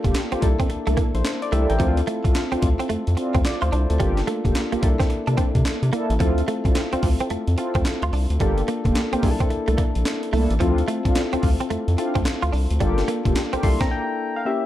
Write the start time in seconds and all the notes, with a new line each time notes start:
Already playing: A#3 D4 F4 A4
0.04 F1 A#3 F4 G4, muted clean electric guitar stroke, kick, closed hi-hat
0.14 snare, clap, closed hi-hat
0.32 C2 A#3 C4 F4 G4, closed hi-hat
0.41 C2 A#3 D4 E4 A4, muted clean electric guitar stroke, kick, closed hi-hat
0.60 C4, kick, closed hi-hat
0.70 C2, muted clean electric guitar stroke, closed hi-hat
0.87 C2 A3 A#3 D4 E4 A4, closed hi-hat
0.97 A#3, kick, closed hi-hat
1.15 A#1 E4 C5, closed hi-hat
1.25 snare, clap, closed hi-hat
1.42 D5, closed hi-hat
1.52 C2 A3 A#3 D4 E4 G4 A4 E5, closed hi-hat
1.70 A1 A#4 G5, closed hi-hat
1.78 D2 F3 C4 D4 E4 F4 A4, kick, closed hi-hat
1.97 closed hi-hat
2.07 A3, closed hi-hat
2.24 C2 C4 D4 F4, muted clean electric guitar stroke, kick, closed hi-hat
2.35 snare, clap, closed hi-hat
2.52 D2 C4 D4 F4, closed hi-hat
2.62 D2, muted clean electric guitar stroke, kick, closed hi-hat
2.79 C4, closed hi-hat
2.89 F2 A3, closed hi-hat
3.07 F2, closed hi-hat
3.17 C4 D4 F4, muted clean electric guitar stroke, closed hi-hat
3.35 D2 C4, kick, closed hi-hat
3.45 F4 D5, muted clean electric guitar stroke, snare, clap, closed hi-hat
3.62 D2 E4 F4 C5, closed hi-hat
3.72 C2 D4, closed hi-hat
3.90 D2 C4 A4, closed hi-hat
3.99 G1 G3 A#3 D4 F4 G4 A4, kick, closed hi-hat
4.17 snare, closed hi-hat
4.27 A3, closed hi-hat
4.45 F1 A#3 F4 G4, muted clean electric guitar stroke, kick, closed hi-hat
4.55 snare, clap, closed hi-hat
4.72 C2 A#3 F4 G4, closed hi-hat
4.81 C2 A#3 D4 E4 A4, muted clean electric guitar stroke, kick, closed hi-hat
5.00 C4, kick, snare, closed hi-hat
5.10 muted clean electric guitar stroke, closed hi-hat
5.27 C3 A#3 D4 E4 A4, closed hi-hat
5.37 C4, kick, closed hi-hat
5.55 C3, kick, closed hi-hat
5.65 snare, clap, closed hi-hat
5.83 C3, closed hi-hat
5.92 A#3 D4 E4 A4, closed hi-hat
6.10 A1, closed hi-hat
6.19 D2 F3 C4 D4 E4 F4 A4, kick, closed hi-hat
6.38 closed hi-hat
6.48 A3, closed hi-hat
6.65 C2 C4 D4 F4, muted clean electric guitar stroke, kick, closed hi-hat
6.75 snare, clap, closed hi-hat
6.93 D2 C4 D4 F4, closed hi-hat
7.03 D2, muted clean electric guitar stroke, kick, open hi-hat
7.20 C4, closed hi-hat
7.30 F2 A3, closed hi-hat
7.47 F2, closed hi-hat
7.57 C4 D4 E4 F4 A4, muted clean electric guitar stroke, closed hi-hat
7.75 D2 C4, kick, closed hi-hat
7.85 muted clean electric guitar stroke, snare, clap, closed hi-hat
8.02 D2 F4, closed hi-hat
8.13 C2 D4, open hi-hat
8.30 D2, closed hi-hat
8.40 G1 G3 A#3 D4 F4 G4 A4, kick, closed hi-hat
8.58 closed hi-hat
8.68 A#3, closed hi-hat
8.85 F1 A#3 F4 G4, muted clean electric guitar stroke, kick, closed hi-hat
8.95 snare, clap, closed hi-hat
9.12 C2 A#3 C4 F4 G4, closed hi-hat
9.22 C2 A#3 D4 E4 G#4, muted clean electric guitar stroke, kick, open hi-hat
9.31 A4
9.40 C4, kick, closed hi-hat
9.50 C2, muted clean electric guitar stroke, closed hi-hat
9.68 C2 A3 A#3 D4 E4 A4, closed hi-hat
9.78 A#3, kick, closed hi-hat
9.95 A#1, closed hi-hat
10.05 snare, clap, closed hi-hat
10.23 closed hi-hat
10.33 C2 A3 A#3 D4 E4 A4, open hi-hat
10.50 A1, closed hi-hat
10.60 D2 F3 C4 D4 E4 F4 A4, kick, closed hi-hat
10.78 closed hi-hat
10.88 A3, closed hi-hat
11.05 C2 C4 D4 F4, muted clean electric guitar stroke, kick, closed hi-hat
11.15 snare, clap, closed hi-hat
11.33 D2 C4 D4 F4, closed hi-hat
11.43 D2, muted clean electric guitar stroke, kick, open hi-hat
11.60 C4, closed hi-hat
11.70 F2 A3, closed hi-hat
11.88 F2, closed hi-hat
11.98 C4 D4 E4 F4 A4, muted clean electric guitar stroke, closed hi-hat
12.15 D2 C4, kick, closed hi-hat
12.25 muted clean electric guitar stroke, snare, clap, closed hi-hat
12.42 D2 F4, closed hi-hat
12.53 C2 D4, open hi-hat
12.71 D2, closed hi-hat
12.80 G1 G3 A#3 D4 F4 G4 A4, kick, closed hi-hat
12.98 snare, closed hi-hat
13.08 A#3, closed hi-hat
13.25 F1 A#3 F4 G4, muted clean electric guitar stroke, kick, closed hi-hat
13.35 snare, clap, closed hi-hat
13.53 C2 A#3 C4 F4 G4, closed hi-hat
13.63 C2 A#3 D4 E4 A4 C6, muted clean electric guitar stroke, kick, open hi-hat
13.81 C4 A#5, kick, snare, closed hi-hat
13.91 G5
14.36 F5
14.45 A#3 C#4 E4 G4 E5